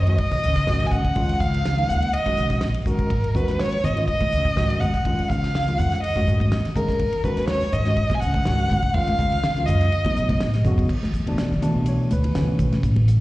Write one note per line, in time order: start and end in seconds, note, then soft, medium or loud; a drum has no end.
0.00 0.14 F#2 loud
0.00 0.17 D#5 medium
0.07 0.19 D#3 medium
0.07 0.19 G#3 medium
0.07 0.19 C#4 medium
0.07 0.19 F#4 medium
0.07 ride soft
0.18 0.88 D#5 loud
0.18 kick medium
0.18 ride medium
0.31 0.41 B1 medium
0.31 kick medium
0.31 snare soft
0.31 ride soft
0.43 0.63 C#2 medium
0.43 hi-hat pedal medium
0.56 kick medium
0.56 snare soft
0.56 ride medium
0.67 0.78 G#1 medium
0.67 1.01 D#3 medium
0.67 1.01 G#3 medium
0.67 1.01 C#4 medium
0.67 1.01 F#4 medium
0.67 snare medium
0.67 ride medium
0.80 muted upright bass stroke soft
0.80 snare soft
0.80 ride medium
0.87 0.93 G#5 medium
0.91 1.17 C#2 medium
0.91 1.42 F#5 medium
0.91 kick medium
0.91 hi-hat pedal medium
1.05 kick medium
1.05 ride medium
1.15 1.26 F#2 medium
1.15 1.57 D#3 medium
1.15 1.57 G#3 medium
1.15 1.57 C#4 medium
1.15 1.58 F4 medium
1.15 kick medium
1.15 ride medium
1.29 muted upright bass stroke soft
1.29 ride medium
1.40 1.78 C#2 medium
1.40 1.90 F5 medium
1.40 kick medium
1.40 hi-hat pedal medium
1.54 ride medium
1.65 snare medium
1.65 ride medium
1.77 2.10 D#3 medium
1.77 2.10 G#3 medium
1.77 2.10 C#4 soft
1.77 2.10 D#4 medium
1.77 ride medium
1.89 2.08 D#2 loud
1.89 2.15 F#5 medium
1.89 hi-hat pedal medium
2.02 ride soft
2.14 2.62 D#5 medium
2.14 muted upright bass stroke soft
2.14 ride medium
2.26 2.35 F#2 medium
2.26 2.67 D#3 medium
2.26 2.67 G#3 medium
2.26 2.67 C#4 medium
2.26 2.67 F#4 medium
2.26 kick medium
2.26 ride medium
2.37 2.60 B1 medium
2.37 hi-hat pedal medium
2.50 kick medium
2.50 snare soft
2.50 ride medium
2.61 2.84 A#1 medium
2.61 snare medium
2.61 ride medium
2.74 ride medium
2.86 3.08 G#1 medium
2.86 3.11 D#3 medium
2.86 3.11 G#3 medium
2.86 3.11 C#4 medium
2.86 3.11 F#4 medium
2.86 3.39 A#4 medium
2.86 kick medium
2.86 hi-hat pedal medium
2.99 kick medium
2.99 ride medium
3.10 3.21 G#2 medium
3.10 kick medium
3.10 ride medium
3.24 muted upright bass stroke soft
3.24 ride soft
3.34 3.73 D#2 medium
3.34 3.76 D#3 medium
3.34 3.76 G#3 medium
3.34 3.77 C#4 medium
3.34 3.77 F#4 medium
3.34 3.62 B4 medium
3.34 kick medium
3.34 hi-hat pedal medium
3.34 low conga medium
3.48 snare soft
3.48 ride soft
3.59 3.86 C#5 medium
3.59 snare medium
3.59 ride medium
3.72 ride soft
3.84 4.03 G#2 medium
3.84 4.07 D#5 medium
3.84 hi-hat pedal medium
3.84 low conga medium
3.96 4.08 D#3 medium
3.96 4.08 G#3 medium
3.96 4.08 C#4 medium
3.96 4.08 F4 medium
3.96 ride soft
4.08 4.82 D#5 loud
4.08 kick medium
4.08 ride medium
4.21 4.30 B1 medium
4.21 kick medium
4.21 ride soft
4.21 high conga medium
4.32 4.52 C#2 medium
4.32 hi-hat pedal medium
4.45 kick medium
4.45 ride soft
4.45 high conga medium
4.56 4.67 G#1 medium
4.56 4.90 D#3 medium
4.56 4.90 G#3 medium
4.56 4.90 C#4 medium
4.56 4.90 F#4 medium
4.56 snare medium
4.56 ride medium
4.70 muted upright bass stroke soft
4.70 ride medium
4.81 5.05 F2 medium
4.81 5.30 F#5 medium
4.81 kick medium
4.81 hi-hat pedal medium
4.81 high conga medium
4.81 low conga medium
4.94 kick medium
4.94 snare soft
4.94 ride medium
5.05 5.15 F#2 medium
5.05 5.47 D#3 medium
5.05 5.47 G#3 medium
5.05 5.47 C#4 medium
5.05 5.47 F4 medium
5.05 kick medium
5.05 ride medium
5.19 muted upright bass stroke soft
5.19 ride soft
5.29 5.68 C#2 medium
5.29 5.80 F5 medium
5.29 kick medium
5.29 hi-hat pedal medium
5.29 low conga medium
5.44 snare soft
5.44 ride medium
5.55 snare loud
5.55 ride medium
5.67 5.99 D#3 medium
5.67 5.99 G#3 medium
5.67 6.00 C#4 medium
5.67 6.00 F4 medium
5.67 ride medium
5.79 5.97 F2 medium
5.79 6.02 F#5 medium
5.79 hi-hat pedal medium
5.79 low conga medium
5.92 snare soft
5.92 ride medium
6.03 6.48 D#5 medium
6.03 muted upright bass stroke soft
6.03 ride medium
6.16 6.25 F#2 medium
6.16 6.56 D#3 medium
6.16 6.57 G#3 medium
6.16 6.56 C#4 medium
6.16 6.57 F#4 medium
6.16 kick medium
6.16 ride medium
6.16 high conga medium
6.27 6.46 G#2 medium
6.27 hi-hat pedal medium
6.40 kick medium
6.40 ride medium
6.40 high conga medium
6.51 6.61 D#2 medium
6.51 snare medium
6.51 ride medium
6.65 muted upright bass stroke soft
6.65 snare soft
6.65 ride medium
6.76 6.86 G#2 medium
6.76 7.00 D#3 medium
6.76 7.00 G#3 medium
6.76 7.01 C#4 medium
6.76 7.01 G#4 medium
6.76 7.26 A#4 medium
6.76 kick medium
6.76 hi-hat pedal medium
6.76 high conga medium
6.76 low conga medium
6.89 kick medium
6.89 snare soft
6.89 ride medium
6.99 7.10 G#2 medium
6.99 kick medium
6.99 ride medium
7.13 muted upright bass stroke soft
7.13 ride medium
7.24 7.62 D#2 medium
7.24 7.66 D#3 medium
7.24 7.66 G#3 medium
7.24 7.66 C#4 medium
7.24 7.66 F#4 medium
7.24 7.48 B4 medium
7.24 kick medium
7.24 hi-hat pedal medium
7.24 low conga medium
7.37 snare soft
7.37 ride medium
7.48 7.75 C#5 medium
7.48 snare loud
7.48 ride medium
7.61 snare soft
7.61 ride soft
7.72 7.92 G#2 loud
7.72 8.16 D#5 medium
7.72 hi-hat pedal medium
7.85 7.97 D#3 medium
7.85 7.97 G#3 medium
7.85 7.98 C#4 medium
7.85 7.98 F#4 medium
7.85 snare soft
7.85 ride soft
7.97 kick medium
7.97 ride medium
8.10 8.19 B1 medium
8.10 kick medium
8.10 snare soft
8.10 ride soft
8.10 high conga medium
8.15 8.22 G#5 medium
8.20 8.41 C#2 medium
8.20 8.96 F#5 loud
8.20 hi-hat pedal medium
8.34 kick medium
8.34 ride soft
8.34 high conga medium
8.45 8.56 G#1 medium
8.45 8.79 D#3 medium
8.45 8.79 G#3 medium
8.45 8.80 C#4 medium
8.45 8.80 F#4 medium
8.45 snare loud
8.45 ride medium
8.58 muted upright bass stroke soft
8.58 ride medium
8.70 8.96 C#2 medium
8.70 kick medium
8.70 hi-hat pedal medium
8.70 high conga medium
8.70 low conga medium
8.82 kick medium
8.82 ride medium
8.94 9.05 F#2 medium
8.94 9.36 D#3 medium
8.94 9.37 G#3 medium
8.94 9.37 C#4 medium
8.94 9.37 F4 medium
8.94 9.68 F5 loud
8.94 kick loud
8.94 ride medium
9.07 muted upright bass stroke soft
9.07 ride soft
9.07 high conga medium
9.19 9.57 C#2 medium
9.19 kick medium
9.19 hi-hat pedal medium
9.19 high conga medium
9.19 low conga medium
9.32 ride medium
9.43 snare loud
9.43 ride medium
9.43 low conga medium
9.56 9.89 D#3 medium
9.56 9.89 G#3 medium
9.56 9.89 C#4 medium
9.56 9.89 F4 medium
9.56 snare soft
9.56 ride soft
9.66 9.87 F#2 medium
9.66 10.64 D#5 medium
9.66 hi-hat pedal medium
9.66 low conga medium
9.81 snare soft
9.81 ride medium
9.92 muted upright bass stroke soft
9.92 ride medium
10.05 10.14 A1 medium
10.05 10.46 C#3 medium
10.05 10.45 F#3 medium
10.05 10.46 B3 medium
10.05 10.46 D#4 medium
10.05 kick medium
10.05 snare soft
10.05 ride medium
10.05 high conga medium
10.16 10.35 B1 medium
10.16 hi-hat pedal medium
10.29 kick medium
10.29 snare soft
10.29 ride medium
10.29 high conga medium
10.40 10.63 A2 medium
10.40 10.87 D#5 medium
10.40 snare loud
10.40 ride medium
10.54 snare soft
10.54 ride medium
10.65 10.87 F#2 medium
10.65 10.90 C#3 medium
10.65 10.90 F#3 medium
10.65 10.90 B3 medium
10.65 10.90 F#4 medium
10.65 kick medium
10.65 hi-hat pedal medium
10.65 high conga medium
10.65 low conga medium
10.78 kick medium
10.78 ride medium
10.89 11.18 E2 medium
10.89 kick medium
10.89 crash medium
11.03 snare soft
11.03 high conga medium
11.13 kick medium
11.13 hi-hat pedal medium
11.13 ride medium
11.26 11.35 E2 medium
11.26 11.52 B2 medium
11.26 11.52 E3 medium
11.26 11.52 A3 medium
11.26 11.52 D4 medium
11.26 ride medium
11.38 11.84 D5 medium
11.38 muted upright bass stroke soft
11.38 snare loud
11.38 hi-hat pedal medium
11.38 ride medium
11.51 11.60 E3 medium
11.51 snare soft
11.62 12.11 B2 medium
11.62 12.11 E3 medium
11.62 12.12 A3 medium
11.62 12.12 D4 medium
11.62 muted upright bass stroke soft
11.62 hi-hat pedal medium
11.62 ride medium
11.62 low conga medium
11.75 12.03 B1 medium
11.86 12.11 C#5 medium
11.86 hi-hat pedal medium
11.86 ride medium
12.10 12.21 D2 medium
12.10 12.81 B4 medium
12.10 hi-hat pedal medium
12.10 ride medium
12.10 high conga medium
12.24 muted upright bass stroke soft
12.24 ride medium
12.24 low conga medium
12.35 12.84 B2 medium
12.35 12.84 E3 medium
12.35 12.45 E3 medium
12.35 12.84 A3 medium
12.35 12.84 C#4 medium
12.35 snare medium
12.35 hi-hat pedal medium
12.35 ride medium
12.59 12.69 B1 medium
12.59 kick medium
12.59 hi-hat pedal medium
12.59 ride medium
12.59 low conga medium
12.72 snare soft
12.72 ride soft
12.72 high conga medium
12.83 13.20 A1 medium
12.83 kick loud
12.83 hi-hat pedal medium
12.83 ride medium
12.96 high conga medium
13.08 hi-hat pedal medium
13.08 ride soft